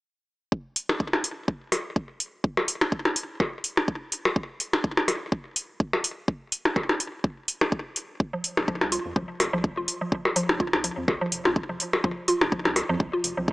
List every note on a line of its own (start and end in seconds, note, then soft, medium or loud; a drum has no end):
0.52 kick loud
0.76 open hi-hat medium
0.89 percussion blips soft
0.89 percussion blips medium
1.00 kick loud
1.13 percussion blips medium
1.24 open hi-hat medium
1.48 kick loud
1.72 open hi-hat medium
1.72 percussion blips soft
1.96 kick loud
2.20 open hi-hat medium
2.44 kick loud
2.57 percussion blips soft
2.68 open hi-hat medium
2.81 percussion blips medium
2.92 kick loud
3.05 percussion blips medium
3.16 open hi-hat medium
3.40 kick loud
3.40 percussion blips soft
3.64 open hi-hat medium
3.77 percussion blips medium
3.88 kick loud
4.12 open hi-hat medium
4.25 percussion blips soft
4.36 kick loud
4.60 open hi-hat medium
4.73 percussion blips medium
4.84 kick loud
4.97 percussion blips medium
5.08 open hi-hat medium
5.08 percussion blips soft
5.32 kick loud
5.56 open hi-hat medium
5.80 kick loud
5.93 percussion blips soft
6.04 open hi-hat medium
6.28 kick loud
6.52 open hi-hat medium
6.65 percussion blips medium
6.76 kick loud
6.76 percussion blips soft
6.89 percussion blips medium
7.00 open hi-hat medium
7.24 kick loud
7.48 open hi-hat medium
7.61 percussion blips soft
7.61 percussion blips medium
7.72 kick loud
7.96 open hi-hat medium
8.20 kick loud
8.33 8.36 F3 medium
8.44 open hi-hat medium
8.57 8.65 F1 medium
8.57 percussion blips soft
8.57 percussion blips medium
8.68 8.75 F3 loud
8.68 kick loud
8.81 8.98 C2 loud
8.81 percussion blips medium
8.92 8.97 F4 medium
8.92 open hi-hat medium
9.05 9.13 F2 medium
9.16 9.26 C2 loud
9.16 9.19 F3 medium
9.16 kick loud
9.40 9.50 F1 medium
9.40 open hi-hat medium
9.40 percussion blips soft
9.53 9.70 C2 medium
9.53 9.59 F3 loud
9.64 kick loud
9.77 9.85 F1 medium
9.77 9.81 F4 medium
9.88 open hi-hat medium
10.01 10.04 F3 medium
10.12 kick loud
10.25 percussion blips soft
10.36 10.43 F3 loud
10.36 open hi-hat medium
10.49 10.57 F1 medium
10.49 percussion blips medium
10.60 10.65 F4 medium
10.60 kick loud
10.73 10.90 C2 medium
10.73 percussion blips medium
10.84 10.87 F3 medium
10.84 open hi-hat medium
10.97 11.05 F2 medium
11.08 11.18 C2 loud
11.08 kick loud
11.08 percussion blips soft
11.21 11.27 F3 loud
11.32 11.42 F1 medium
11.32 open hi-hat medium
11.45 11.62 C2 medium
11.45 11.49 F4 medium
11.45 percussion blips medium
11.56 kick loud
11.69 11.77 F1 medium
11.69 11.72 F3 medium
11.80 open hi-hat medium
11.93 percussion blips soft
12.04 12.11 F3 loud
12.04 kick loud
12.28 12.33 F4 medium
12.28 open hi-hat medium
12.41 12.49 F1 loud
12.41 percussion blips medium
12.52 12.55 F3 medium
12.52 kick loud
12.65 12.82 C2 medium
12.65 percussion blips medium
12.76 open hi-hat medium
12.76 percussion blips soft
12.89 12.97 F2 medium
12.89 12.95 F3 loud
13.00 13.10 C2 loud
13.00 kick loud
13.13 13.17 F4 medium
13.24 13.34 F1 medium
13.24 open hi-hat medium
13.37 13.53 C2 medium
13.37 13.40 F3 medium
13.48 kick loud